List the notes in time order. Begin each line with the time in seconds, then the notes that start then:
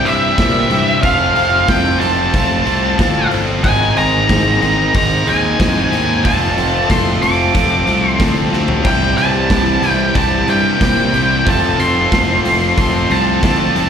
Already playing: C3 G3 C4 E4
0.04 G2 C3 E3 G3 C4 E4 G4 E5, open hi-hat
0.37 A#2 C3 E3 G3 C4 E4 G4, kick, snare, open hi-hat
0.70 G2 C3 E3 G3 C4 E4 G4, open hi-hat
1.03 F1 F3 A3 C4 F4 A4 F5, kick, open hi-hat
1.35 F1 F3 A3 C4 F4 A4, open hi-hat
1.67 F1 F3 A3 C4 F4 A4 G5, kick, snare, open hi-hat
2.00 F1 F3 A3 C4 F4 A4 A5, open hi-hat
2.32 F1 F3 A3 C4 F4 A4, kick, open hi-hat
2.65 C2 F3 A3 C4 F4 A4, open hi-hat
2.99 D2 F3 A3 C4 F4 A4, kick, snare, open hi-hat
3.30 G1 F3 A3 C4 F4 A4, open hi-hat
3.63 G#1 G#2 D#3 G#3 C4 D#4 G#4 G#5, kick, open hi-hat
3.82 snare
3.96 G#1 G#2 D#3 G#3 C4 D#4 G#4 A#5, open hi-hat
4.29 G#1 G#2 D#3 G#3 C4 D#4 G#4, kick, snare, open hi-hat
4.61 G#1 G#2 D#3 G#3 C4 D#4 G#4, open hi-hat
4.94 G#1 G#2 D#3 G#3 C4 D#4 G#4 A#5, kick, open hi-hat
5.27 D#2 G#2 D#3 G#3 C4 D#4 G#4 G#5, open hi-hat
5.59 F2 G#2 D#3 G#3 C4 D#4 G#4, kick, snare, open hi-hat
5.91 D#2 G#2 D#3 G#3 C4 D#4 G#4, open hi-hat
6.25 F1 F3 A3 C4 F4 A4 A5, kick, open hi-hat
6.57 F1 F3 A3 C4 F4 A4, open hi-hat
6.89 F1 F3 A3 C4 F4 A4 C6, kick, snare, open hi-hat
7.22 F1 F3 A3 C4 F4 A4 D6, open hi-hat
7.55 F1 F3 A3 C4 F4 A4, kick, open hi-hat
7.87 C2 F3 A3 C4 F4 A4, open hi-hat
8.09 C6
8.19 D2 F3 A3 C4 F4 A4, kick, snare, open hi-hat
8.53 D2 F3 A3 C4 F4 A4, snare
8.68 floor tom
8.84 C2 C3 E3 G3 C4 E4 G4 G5, kick, crash
9.03 snare
9.18 C2 C3 E3 G3 C4 E4 G4 A5, open hi-hat
9.50 C2 C3 E3 G3 C4 E4 G4, kick, snare, open hi-hat
9.82 C2 C3 E3 G3 C4 E4 G4, open hi-hat
9.89 G5
10.15 C2 C3 E3 G3 C4 E4 G4 A5, kick, open hi-hat
10.48 G2 C3 E3 G3 C4 E4 G4 G5, open hi-hat
10.81 A#2 C3 E3 G3 C4 E4 G4, kick, snare, open hi-hat
11.13 C2 C3 E3 G3 C4 E4 G4, open hi-hat
11.46 F1 F3 A3 C4 F4 A4 A5, kick, open hi-hat
11.79 F1 F3 A3 C4 F4 A4 C6, open hi-hat
12.11 F1 F3 A3 C4 F4 A4, kick, snare, open hi-hat
12.44 F1 F3 A3 C4 F4 A4, open hi-hat
12.76 F1 F3 A3 C4 F4 A4 C6, kick, open hi-hat
13.09 C2 F3 A3 C4 F4 A4 A5, open hi-hat
13.42 D2 F3 A3 C4 F4 A4, kick, snare, open hi-hat
13.75 F1 F3 A3 C4 F4 A4, open hi-hat